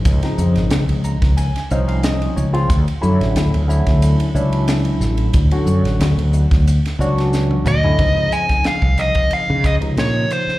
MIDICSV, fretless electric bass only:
0, 0, Header, 1, 3, 480
1, 0, Start_track
1, 0, Tempo, 661521
1, 38, Time_signature, 4, 2, 24, 8
1, 7683, End_track
2, 0, Start_track
2, 0, Title_t, "Fretless electric bass"
2, 0, Program_c, 0, 35
2, 40, Note_on_c, 0, 37, 101
2, 146, Note_off_c, 0, 37, 0
2, 277, Note_on_c, 0, 41, 80
2, 384, Note_off_c, 0, 41, 0
2, 404, Note_on_c, 0, 32, 75
2, 499, Note_off_c, 0, 32, 0
2, 513, Note_on_c, 0, 37, 89
2, 622, Note_off_c, 0, 37, 0
2, 645, Note_on_c, 0, 37, 72
2, 847, Note_off_c, 0, 37, 0
2, 886, Note_on_c, 0, 37, 74
2, 1087, Note_off_c, 0, 37, 0
2, 1242, Note_on_c, 0, 36, 85
2, 1644, Note_off_c, 0, 36, 0
2, 1718, Note_on_c, 0, 37, 83
2, 1919, Note_off_c, 0, 37, 0
2, 1954, Note_on_c, 0, 38, 97
2, 2062, Note_off_c, 0, 38, 0
2, 2201, Note_on_c, 0, 42, 76
2, 2306, Note_off_c, 0, 42, 0
2, 2328, Note_on_c, 0, 33, 83
2, 2420, Note_off_c, 0, 33, 0
2, 2436, Note_on_c, 0, 38, 94
2, 2543, Note_off_c, 0, 38, 0
2, 2573, Note_on_c, 0, 38, 76
2, 2770, Note_off_c, 0, 38, 0
2, 2807, Note_on_c, 0, 38, 74
2, 3007, Note_off_c, 0, 38, 0
2, 3153, Note_on_c, 0, 37, 85
2, 3558, Note_off_c, 0, 37, 0
2, 3630, Note_on_c, 0, 33, 82
2, 3833, Note_off_c, 0, 33, 0
2, 3874, Note_on_c, 0, 38, 98
2, 3981, Note_off_c, 0, 38, 0
2, 4107, Note_on_c, 0, 42, 81
2, 4217, Note_off_c, 0, 42, 0
2, 4236, Note_on_c, 0, 33, 78
2, 4333, Note_off_c, 0, 33, 0
2, 4349, Note_on_c, 0, 38, 93
2, 4458, Note_off_c, 0, 38, 0
2, 4480, Note_on_c, 0, 38, 77
2, 4682, Note_off_c, 0, 38, 0
2, 4724, Note_on_c, 0, 38, 72
2, 4925, Note_off_c, 0, 38, 0
2, 5072, Note_on_c, 0, 37, 85
2, 5477, Note_off_c, 0, 37, 0
2, 5547, Note_on_c, 0, 38, 79
2, 5752, Note_off_c, 0, 38, 0
2, 5798, Note_on_c, 0, 37, 86
2, 5999, Note_off_c, 0, 37, 0
2, 6399, Note_on_c, 0, 36, 65
2, 6602, Note_off_c, 0, 36, 0
2, 6892, Note_on_c, 0, 49, 90
2, 7090, Note_off_c, 0, 49, 0
2, 7120, Note_on_c, 0, 37, 82
2, 7216, Note_off_c, 0, 37, 0
2, 7232, Note_on_c, 0, 46, 70
2, 7436, Note_off_c, 0, 46, 0
2, 7683, End_track
3, 0, Start_track
3, 0, Title_t, "Muted fretless electric bass strokes"
3, 6757, Note_on_c, 9, 29, 31
3, 6830, Note_off_c, 9, 29, 0
3, 7597, Note_on_c, 9, 29, 29
3, 7670, Note_off_c, 9, 29, 0
3, 7683, End_track
0, 0, End_of_file